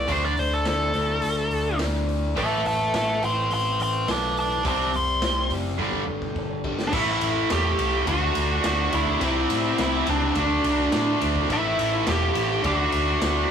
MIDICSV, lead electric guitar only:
0, 0, Header, 1, 2, 480
1, 0, Start_track
1, 0, Tempo, 570342
1, 75, Time_signature, 4, 2, 24, 8
1, 11368, End_track
2, 0, Start_track
2, 0, Title_t, "Lead electric guitar"
2, 0, Program_c, 0, 29
2, 0, Note_on_c, 0, 74, 84
2, 101, Note_off_c, 0, 74, 0
2, 101, Note_on_c, 0, 72, 93
2, 205, Note_off_c, 0, 72, 0
2, 214, Note_on_c, 0, 74, 90
2, 328, Note_off_c, 0, 74, 0
2, 328, Note_on_c, 0, 72, 96
2, 438, Note_off_c, 0, 72, 0
2, 451, Note_on_c, 0, 69, 83
2, 557, Note_off_c, 0, 69, 0
2, 567, Note_on_c, 0, 69, 103
2, 1492, Note_off_c, 0, 69, 0
2, 2007, Note_on_c, 0, 76, 94
2, 2011, Note_on_c, 0, 81, 94
2, 2233, Note_off_c, 0, 76, 0
2, 2234, Note_off_c, 0, 81, 0
2, 2243, Note_on_c, 0, 76, 75
2, 2248, Note_on_c, 0, 81, 85
2, 2462, Note_off_c, 0, 76, 0
2, 2474, Note_off_c, 0, 81, 0
2, 2486, Note_on_c, 0, 76, 85
2, 2494, Note_on_c, 0, 81, 92
2, 2704, Note_off_c, 0, 76, 0
2, 2718, Note_off_c, 0, 81, 0
2, 2731, Note_on_c, 0, 79, 90
2, 2737, Note_on_c, 0, 84, 95
2, 2947, Note_off_c, 0, 79, 0
2, 2959, Note_off_c, 0, 84, 0
2, 2974, Note_on_c, 0, 79, 78
2, 2979, Note_on_c, 0, 84, 90
2, 3189, Note_off_c, 0, 79, 0
2, 3200, Note_off_c, 0, 84, 0
2, 3217, Note_on_c, 0, 79, 66
2, 3222, Note_on_c, 0, 84, 72
2, 3431, Note_off_c, 0, 79, 0
2, 3440, Note_off_c, 0, 84, 0
2, 3457, Note_on_c, 0, 81, 85
2, 3461, Note_on_c, 0, 86, 98
2, 3670, Note_off_c, 0, 81, 0
2, 3681, Note_off_c, 0, 86, 0
2, 3692, Note_on_c, 0, 81, 80
2, 3703, Note_on_c, 0, 86, 84
2, 3908, Note_off_c, 0, 81, 0
2, 3923, Note_off_c, 0, 86, 0
2, 3937, Note_on_c, 0, 81, 82
2, 3943, Note_on_c, 0, 86, 81
2, 4151, Note_off_c, 0, 81, 0
2, 4161, Note_off_c, 0, 86, 0
2, 4179, Note_on_c, 0, 84, 100
2, 4634, Note_off_c, 0, 84, 0
2, 5785, Note_on_c, 0, 62, 70
2, 5832, Note_on_c, 0, 64, 96
2, 5840, Note_off_c, 0, 62, 0
2, 6328, Note_off_c, 0, 64, 0
2, 6331, Note_on_c, 0, 67, 120
2, 6771, Note_off_c, 0, 67, 0
2, 6806, Note_on_c, 0, 66, 96
2, 7281, Note_off_c, 0, 66, 0
2, 7291, Note_on_c, 0, 66, 105
2, 7529, Note_off_c, 0, 66, 0
2, 7532, Note_on_c, 0, 64, 96
2, 8249, Note_off_c, 0, 64, 0
2, 8259, Note_on_c, 0, 64, 102
2, 8495, Note_off_c, 0, 64, 0
2, 8495, Note_on_c, 0, 62, 83
2, 9413, Note_off_c, 0, 62, 0
2, 9701, Note_on_c, 0, 64, 95
2, 10173, Note_off_c, 0, 64, 0
2, 10176, Note_on_c, 0, 67, 120
2, 10651, Note_off_c, 0, 67, 0
2, 10655, Note_on_c, 0, 67, 99
2, 10747, Note_off_c, 0, 67, 0
2, 10747, Note_on_c, 0, 66, 99
2, 11368, Note_off_c, 0, 66, 0
2, 11368, End_track
0, 0, End_of_file